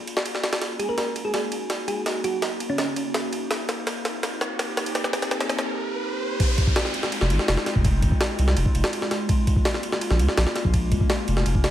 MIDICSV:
0, 0, Header, 1, 7, 480
1, 0, Start_track
1, 0, Key_signature, -4, "minor"
1, 0, Tempo, 361446
1, 819, Time_signature, 4, 2, 24, 8
1, 15546, End_track
2, 0, Start_track
2, 0, Title_t, "Synth pluck"
2, 0, Program_c, 0, 84
2, 1054, Note_on_c, 0, 68, 91
2, 1154, Note_off_c, 0, 68, 0
2, 1180, Note_on_c, 0, 70, 89
2, 1256, Note_off_c, 0, 70, 0
2, 1298, Note_on_c, 0, 70, 77
2, 1376, Note_off_c, 0, 70, 0
2, 1657, Note_on_c, 0, 68, 90
2, 1735, Note_off_c, 0, 68, 0
2, 1776, Note_on_c, 0, 68, 76
2, 1855, Note_off_c, 0, 68, 0
2, 2495, Note_on_c, 0, 68, 88
2, 2859, Note_off_c, 0, 68, 0
2, 2976, Note_on_c, 0, 66, 88
2, 3266, Note_off_c, 0, 66, 0
2, 3580, Note_on_c, 0, 61, 89
2, 3656, Note_off_c, 0, 61, 0
2, 3701, Note_on_c, 0, 61, 77
2, 3778, Note_off_c, 0, 61, 0
2, 15546, End_track
3, 0, Start_track
3, 0, Title_t, "Ambient pad"
3, 0, Program_c, 1, 92
3, 0, Note_on_c, 1, 58, 77
3, 0, Note_on_c, 1, 61, 73
3, 0, Note_on_c, 1, 65, 72
3, 0, Note_on_c, 1, 68, 84
3, 764, Note_off_c, 1, 65, 0
3, 765, Note_off_c, 1, 68, 0
3, 822, Note_on_c, 1, 63, 75
3, 822, Note_on_c, 1, 66, 85
3, 4604, Note_off_c, 1, 61, 0
3, 4622, Note_off_c, 1, 66, 0
3, 4658, Note_on_c, 1, 60, 72
3, 4659, Note_on_c, 1, 67, 91
3, 8445, Note_off_c, 1, 58, 0
3, 8448, Note_off_c, 1, 63, 0
3, 8460, Note_off_c, 1, 60, 0
3, 8461, Note_off_c, 1, 67, 0
3, 8500, Note_on_c, 1, 65, 89
3, 8501, Note_on_c, 1, 56, 81
3, 8501, Note_on_c, 1, 60, 76
3, 8502, Note_on_c, 1, 63, 74
3, 12302, Note_off_c, 1, 60, 0
3, 12302, Note_off_c, 1, 63, 0
3, 12336, Note_on_c, 1, 58, 74
3, 12336, Note_on_c, 1, 61, 73
3, 15546, Note_off_c, 1, 56, 0
3, 15546, Note_off_c, 1, 58, 0
3, 15546, Note_off_c, 1, 61, 0
3, 15546, Note_off_c, 1, 65, 0
3, 15546, End_track
4, 0, Start_track
4, 0, Title_t, "Sub bass"
4, 0, Program_c, 2, 38
4, 9578, Note_on_c, 2, 29, 98
4, 9698, Note_on_c, 2, 32, 100
4, 9718, Note_off_c, 2, 29, 0
4, 9808, Note_off_c, 2, 32, 0
4, 9937, Note_on_c, 2, 29, 88
4, 10047, Note_off_c, 2, 29, 0
4, 10299, Note_on_c, 2, 29, 98
4, 10657, Note_on_c, 2, 32, 78
4, 10677, Note_off_c, 2, 29, 0
4, 10767, Note_off_c, 2, 32, 0
4, 11138, Note_on_c, 2, 36, 79
4, 11355, Note_off_c, 2, 36, 0
4, 11378, Note_on_c, 2, 29, 80
4, 11488, Note_off_c, 2, 29, 0
4, 11616, Note_on_c, 2, 29, 85
4, 11727, Note_off_c, 2, 29, 0
4, 13418, Note_on_c, 2, 34, 99
4, 13536, Note_on_c, 2, 37, 99
4, 13556, Note_off_c, 2, 34, 0
4, 13647, Note_off_c, 2, 37, 0
4, 13775, Note_on_c, 2, 34, 89
4, 13886, Note_off_c, 2, 34, 0
4, 14138, Note_on_c, 2, 34, 99
4, 14496, Note_on_c, 2, 37, 80
4, 14516, Note_off_c, 2, 34, 0
4, 14607, Note_off_c, 2, 37, 0
4, 14975, Note_on_c, 2, 29, 82
4, 15194, Note_off_c, 2, 29, 0
4, 15214, Note_on_c, 2, 29, 81
4, 15546, Note_off_c, 2, 29, 0
4, 15546, End_track
5, 0, Start_track
5, 0, Title_t, "Downlifter"
5, 0, Program_c, 3, 103
5, 8499, Note_on_c, 3, 60, 72
5, 12339, Note_off_c, 3, 60, 0
5, 15546, End_track
6, 0, Start_track
6, 0, Title_t, "Riser"
6, 0, Program_c, 4, 103
6, 818, Note_on_c, 4, 60, 74
6, 8499, Note_off_c, 4, 60, 0
6, 15546, End_track
7, 0, Start_track
7, 0, Title_t, "Drums"
7, 99, Note_on_c, 9, 51, 68
7, 221, Note_on_c, 9, 38, 116
7, 232, Note_off_c, 9, 51, 0
7, 339, Note_on_c, 9, 51, 86
7, 354, Note_off_c, 9, 38, 0
7, 460, Note_on_c, 9, 38, 42
7, 471, Note_off_c, 9, 51, 0
7, 577, Note_off_c, 9, 38, 0
7, 577, Note_on_c, 9, 38, 103
7, 577, Note_on_c, 9, 51, 76
7, 699, Note_off_c, 9, 38, 0
7, 699, Note_off_c, 9, 51, 0
7, 699, Note_on_c, 9, 38, 102
7, 699, Note_on_c, 9, 51, 75
7, 816, Note_off_c, 9, 38, 0
7, 816, Note_off_c, 9, 51, 0
7, 816, Note_on_c, 9, 38, 48
7, 816, Note_on_c, 9, 51, 88
7, 949, Note_off_c, 9, 38, 0
7, 949, Note_off_c, 9, 51, 0
7, 1057, Note_on_c, 9, 51, 66
7, 1189, Note_off_c, 9, 51, 0
7, 1297, Note_on_c, 9, 38, 49
7, 1297, Note_on_c, 9, 51, 84
7, 1430, Note_off_c, 9, 38, 0
7, 1430, Note_off_c, 9, 51, 0
7, 1538, Note_on_c, 9, 51, 66
7, 1671, Note_off_c, 9, 51, 0
7, 1776, Note_on_c, 9, 38, 49
7, 1776, Note_on_c, 9, 51, 82
7, 1909, Note_off_c, 9, 38, 0
7, 1909, Note_off_c, 9, 51, 0
7, 2016, Note_on_c, 9, 51, 67
7, 2148, Note_off_c, 9, 51, 0
7, 2255, Note_on_c, 9, 38, 53
7, 2255, Note_on_c, 9, 51, 86
7, 2388, Note_off_c, 9, 38, 0
7, 2388, Note_off_c, 9, 51, 0
7, 2496, Note_on_c, 9, 51, 69
7, 2628, Note_off_c, 9, 51, 0
7, 2735, Note_on_c, 9, 38, 58
7, 2735, Note_on_c, 9, 51, 89
7, 2868, Note_off_c, 9, 38, 0
7, 2868, Note_off_c, 9, 51, 0
7, 2977, Note_on_c, 9, 51, 69
7, 3109, Note_off_c, 9, 51, 0
7, 3217, Note_on_c, 9, 38, 59
7, 3217, Note_on_c, 9, 51, 89
7, 3350, Note_off_c, 9, 38, 0
7, 3350, Note_off_c, 9, 51, 0
7, 3457, Note_on_c, 9, 51, 66
7, 3590, Note_off_c, 9, 51, 0
7, 3695, Note_on_c, 9, 38, 65
7, 3695, Note_on_c, 9, 51, 87
7, 3828, Note_off_c, 9, 38, 0
7, 3828, Note_off_c, 9, 51, 0
7, 3937, Note_on_c, 9, 51, 69
7, 4069, Note_off_c, 9, 51, 0
7, 4175, Note_on_c, 9, 38, 70
7, 4175, Note_on_c, 9, 51, 87
7, 4308, Note_off_c, 9, 38, 0
7, 4308, Note_off_c, 9, 51, 0
7, 4417, Note_on_c, 9, 51, 69
7, 4550, Note_off_c, 9, 51, 0
7, 4656, Note_on_c, 9, 38, 75
7, 4656, Note_on_c, 9, 51, 88
7, 4789, Note_off_c, 9, 38, 0
7, 4789, Note_off_c, 9, 51, 0
7, 4896, Note_on_c, 9, 38, 79
7, 4896, Note_on_c, 9, 51, 70
7, 5029, Note_off_c, 9, 38, 0
7, 5029, Note_off_c, 9, 51, 0
7, 5137, Note_on_c, 9, 38, 77
7, 5137, Note_on_c, 9, 51, 86
7, 5270, Note_off_c, 9, 38, 0
7, 5270, Note_off_c, 9, 51, 0
7, 5379, Note_on_c, 9, 38, 77
7, 5379, Note_on_c, 9, 51, 69
7, 5511, Note_off_c, 9, 38, 0
7, 5511, Note_off_c, 9, 51, 0
7, 5619, Note_on_c, 9, 38, 80
7, 5619, Note_on_c, 9, 51, 85
7, 5752, Note_off_c, 9, 38, 0
7, 5752, Note_off_c, 9, 51, 0
7, 5858, Note_on_c, 9, 38, 87
7, 5991, Note_off_c, 9, 38, 0
7, 6099, Note_on_c, 9, 38, 87
7, 6099, Note_on_c, 9, 51, 87
7, 6232, Note_off_c, 9, 38, 0
7, 6232, Note_off_c, 9, 51, 0
7, 6338, Note_on_c, 9, 38, 89
7, 6338, Note_on_c, 9, 51, 82
7, 6459, Note_off_c, 9, 51, 0
7, 6459, Note_on_c, 9, 51, 79
7, 6471, Note_off_c, 9, 38, 0
7, 6575, Note_off_c, 9, 51, 0
7, 6575, Note_on_c, 9, 38, 94
7, 6575, Note_on_c, 9, 51, 81
7, 6697, Note_off_c, 9, 38, 0
7, 6697, Note_on_c, 9, 38, 81
7, 6708, Note_off_c, 9, 51, 0
7, 6816, Note_off_c, 9, 38, 0
7, 6816, Note_on_c, 9, 38, 99
7, 6816, Note_on_c, 9, 51, 81
7, 6937, Note_off_c, 9, 38, 0
7, 6937, Note_off_c, 9, 51, 0
7, 6937, Note_on_c, 9, 38, 85
7, 6937, Note_on_c, 9, 51, 80
7, 7055, Note_off_c, 9, 38, 0
7, 7055, Note_off_c, 9, 51, 0
7, 7055, Note_on_c, 9, 38, 96
7, 7055, Note_on_c, 9, 51, 80
7, 7178, Note_off_c, 9, 38, 0
7, 7178, Note_off_c, 9, 51, 0
7, 7178, Note_on_c, 9, 38, 85
7, 7178, Note_on_c, 9, 51, 78
7, 7296, Note_off_c, 9, 38, 0
7, 7296, Note_off_c, 9, 51, 0
7, 7296, Note_on_c, 9, 38, 96
7, 7296, Note_on_c, 9, 51, 60
7, 7417, Note_off_c, 9, 38, 0
7, 7417, Note_on_c, 9, 38, 88
7, 7429, Note_off_c, 9, 51, 0
7, 7550, Note_off_c, 9, 38, 0
7, 8498, Note_on_c, 9, 36, 110
7, 8498, Note_on_c, 9, 51, 87
7, 8631, Note_off_c, 9, 36, 0
7, 8631, Note_off_c, 9, 51, 0
7, 8737, Note_on_c, 9, 51, 69
7, 8738, Note_on_c, 9, 36, 97
7, 8859, Note_off_c, 9, 36, 0
7, 8859, Note_on_c, 9, 36, 100
7, 8870, Note_off_c, 9, 51, 0
7, 8977, Note_on_c, 9, 38, 116
7, 8977, Note_on_c, 9, 51, 88
7, 8992, Note_off_c, 9, 36, 0
7, 9098, Note_off_c, 9, 38, 0
7, 9098, Note_on_c, 9, 38, 37
7, 9110, Note_off_c, 9, 51, 0
7, 9217, Note_on_c, 9, 51, 66
7, 9231, Note_off_c, 9, 38, 0
7, 9338, Note_on_c, 9, 38, 54
7, 9350, Note_off_c, 9, 51, 0
7, 9457, Note_on_c, 9, 51, 86
7, 9470, Note_off_c, 9, 38, 0
7, 9579, Note_on_c, 9, 38, 49
7, 9590, Note_off_c, 9, 51, 0
7, 9697, Note_on_c, 9, 51, 69
7, 9712, Note_off_c, 9, 38, 0
7, 9818, Note_on_c, 9, 38, 44
7, 9829, Note_off_c, 9, 51, 0
7, 9937, Note_off_c, 9, 38, 0
7, 9937, Note_on_c, 9, 38, 117
7, 9937, Note_on_c, 9, 51, 86
7, 10058, Note_off_c, 9, 38, 0
7, 10058, Note_on_c, 9, 38, 47
7, 10069, Note_off_c, 9, 51, 0
7, 10177, Note_off_c, 9, 38, 0
7, 10177, Note_on_c, 9, 38, 39
7, 10177, Note_on_c, 9, 51, 69
7, 10299, Note_on_c, 9, 36, 94
7, 10310, Note_off_c, 9, 38, 0
7, 10310, Note_off_c, 9, 51, 0
7, 10417, Note_off_c, 9, 36, 0
7, 10417, Note_on_c, 9, 36, 113
7, 10418, Note_on_c, 9, 51, 89
7, 10550, Note_off_c, 9, 36, 0
7, 10551, Note_off_c, 9, 51, 0
7, 10657, Note_on_c, 9, 36, 100
7, 10657, Note_on_c, 9, 51, 70
7, 10779, Note_off_c, 9, 36, 0
7, 10779, Note_on_c, 9, 36, 101
7, 10789, Note_off_c, 9, 51, 0
7, 10898, Note_on_c, 9, 38, 115
7, 10898, Note_on_c, 9, 51, 88
7, 10912, Note_off_c, 9, 36, 0
7, 11030, Note_off_c, 9, 38, 0
7, 11030, Note_off_c, 9, 51, 0
7, 11139, Note_on_c, 9, 51, 70
7, 11258, Note_on_c, 9, 38, 51
7, 11272, Note_off_c, 9, 51, 0
7, 11376, Note_on_c, 9, 51, 84
7, 11391, Note_off_c, 9, 38, 0
7, 11499, Note_on_c, 9, 36, 96
7, 11509, Note_off_c, 9, 51, 0
7, 11618, Note_on_c, 9, 51, 69
7, 11632, Note_off_c, 9, 36, 0
7, 11738, Note_on_c, 9, 38, 115
7, 11751, Note_off_c, 9, 51, 0
7, 11858, Note_on_c, 9, 51, 85
7, 11871, Note_off_c, 9, 38, 0
7, 11981, Note_on_c, 9, 38, 43
7, 11991, Note_off_c, 9, 51, 0
7, 12099, Note_off_c, 9, 38, 0
7, 12099, Note_on_c, 9, 38, 50
7, 12099, Note_on_c, 9, 51, 70
7, 12232, Note_off_c, 9, 38, 0
7, 12232, Note_off_c, 9, 51, 0
7, 12337, Note_on_c, 9, 51, 90
7, 12338, Note_on_c, 9, 36, 114
7, 12470, Note_off_c, 9, 51, 0
7, 12471, Note_off_c, 9, 36, 0
7, 12578, Note_on_c, 9, 36, 98
7, 12579, Note_on_c, 9, 51, 71
7, 12699, Note_off_c, 9, 36, 0
7, 12699, Note_on_c, 9, 36, 96
7, 12712, Note_off_c, 9, 51, 0
7, 12818, Note_on_c, 9, 38, 114
7, 12818, Note_on_c, 9, 51, 89
7, 12832, Note_off_c, 9, 36, 0
7, 12940, Note_off_c, 9, 38, 0
7, 12940, Note_on_c, 9, 38, 37
7, 12951, Note_off_c, 9, 51, 0
7, 13056, Note_on_c, 9, 51, 67
7, 13072, Note_off_c, 9, 38, 0
7, 13180, Note_on_c, 9, 38, 53
7, 13189, Note_off_c, 9, 51, 0
7, 13299, Note_on_c, 9, 51, 87
7, 13312, Note_off_c, 9, 38, 0
7, 13420, Note_on_c, 9, 38, 49
7, 13431, Note_off_c, 9, 51, 0
7, 13539, Note_on_c, 9, 51, 70
7, 13553, Note_off_c, 9, 38, 0
7, 13659, Note_on_c, 9, 38, 44
7, 13672, Note_off_c, 9, 51, 0
7, 13778, Note_off_c, 9, 38, 0
7, 13778, Note_on_c, 9, 38, 114
7, 13778, Note_on_c, 9, 51, 89
7, 13900, Note_off_c, 9, 38, 0
7, 13900, Note_on_c, 9, 38, 47
7, 13911, Note_off_c, 9, 51, 0
7, 14018, Note_off_c, 9, 38, 0
7, 14018, Note_on_c, 9, 38, 38
7, 14018, Note_on_c, 9, 51, 69
7, 14138, Note_on_c, 9, 36, 94
7, 14151, Note_off_c, 9, 38, 0
7, 14151, Note_off_c, 9, 51, 0
7, 14257, Note_off_c, 9, 36, 0
7, 14257, Note_on_c, 9, 36, 114
7, 14258, Note_on_c, 9, 51, 91
7, 14390, Note_off_c, 9, 36, 0
7, 14390, Note_off_c, 9, 51, 0
7, 14496, Note_on_c, 9, 51, 70
7, 14497, Note_on_c, 9, 36, 99
7, 14618, Note_off_c, 9, 36, 0
7, 14618, Note_on_c, 9, 36, 102
7, 14629, Note_off_c, 9, 51, 0
7, 14736, Note_on_c, 9, 38, 116
7, 14736, Note_on_c, 9, 51, 87
7, 14751, Note_off_c, 9, 36, 0
7, 14869, Note_off_c, 9, 38, 0
7, 14869, Note_off_c, 9, 51, 0
7, 14977, Note_on_c, 9, 51, 68
7, 15097, Note_on_c, 9, 38, 51
7, 15110, Note_off_c, 9, 51, 0
7, 15216, Note_on_c, 9, 51, 83
7, 15229, Note_off_c, 9, 38, 0
7, 15338, Note_on_c, 9, 36, 96
7, 15349, Note_off_c, 9, 51, 0
7, 15457, Note_on_c, 9, 38, 103
7, 15457, Note_on_c, 9, 51, 78
7, 15471, Note_off_c, 9, 36, 0
7, 15546, Note_off_c, 9, 38, 0
7, 15546, Note_off_c, 9, 51, 0
7, 15546, End_track
0, 0, End_of_file